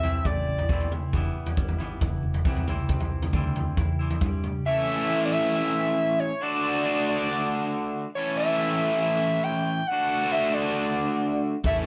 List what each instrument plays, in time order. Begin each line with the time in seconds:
Already playing: fingered electric bass C2, overdriven electric guitar C3 C4, analog synth lead E5
0.03 overdriven electric guitar A2 E3 A3 C4 E4, floor tom
0.24 fingered electric bass A1, overdriven electric guitar A2 A3, analog synth lead D5, kick, floor tom, mid tom
0.47 fingered electric bass A1, overdriven electric guitar A2
0.58 floor tom
0.69 fingered electric bass B1, overdriven electric guitar A2 B2 E3 A3 B3 C4, kick, floor tom
0.73 overdriven electric guitar E4
0.81 floor tom
0.91 muted overdriven electric guitar stroke, muted fingered electric bass stroke, mid tom
1.13 fingered electric bass E1, overdriven electric guitar E2 E3 G3 B3 E4, kick, floor tom
1.34 muted overdriven electric guitar stroke, muted fingered electric bass stroke
1.46 floor tom
1.57 fingered electric bass G1, overdriven electric guitar G2 G3, kick
1.68 floor tom
1.78 overdriven electric guitar E3 G3 B3 E4, floor tom
2.00 fingered electric bass E1, overdriven electric guitar E2 E3, kick, floor tom, mid tom
2.23 fingered electric bass E1, overdriven electric guitar E2
2.34 floor tom
2.44 fingered electric bass C2, overdriven electric guitar C3 E3 G3 B3 C4 E4, kick, floor tom
2.56 floor tom
2.67 fingered electric bass C2, overdriven electric guitar C3 E3 G3 C4 E4, mid tom
2.88 fingered electric bass C2, overdriven electric guitar C3 C4, kick, floor tom
3.00 floor tom
3.22 floor tom, mid tom
3.33 fingered electric bass D2, overdriven electric guitar D3 E3 G3 C4 D4, kick, floor tom
3.37 overdriven electric guitar E4
3.56 floor tom
3.77 fingered electric bass E2, overdriven electric guitar E3 E4, kick, floor tom, mid tom
3.99 overdriven electric guitar E3 G3 C4 E4
4.11 floor tom
4.21 fingered electric bass G2, overdriven electric guitar G3 G4, kick, floor tom
4.44 mid tom
4.65 overdriven electric guitar A2 E3 A3 C#4 E4 A4, analog synth lead E5
5.25 analog synth lead D5
5.32 analog synth lead E5
6.20 analog synth lead C#5
6.40 overdriven electric guitar D3 A3 D4 F#4 A4, analog synth lead D5
6.85 analog synth lead D5
7.09 analog synth lead D5
8.15 overdriven electric guitar A2 E3 A3 C#4 E4 A4, analog synth lead C#5
8.37 analog synth lead E5
9.01 analog synth lead E5
9.44 analog synth lead G5
9.87 overdriven electric guitar D3 A3 D4, analog synth lead F#5
9.91 overdriven electric guitar A3 D4 F#4 A4
10.32 analog synth lead E5
10.54 analog synth lead D5
11.64 fingered electric bass A1, overdriven electric guitar A2 E3 A3 C#4 E4, analog synth lead E5, kick, floor tom
11.68 overdriven electric guitar A4